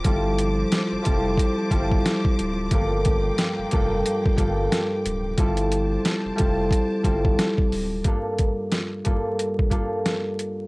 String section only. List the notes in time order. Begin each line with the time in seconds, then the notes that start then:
Already playing: F3 D6
0.07 C5 A5
2.72 A#3 G5
5.39 C5 A5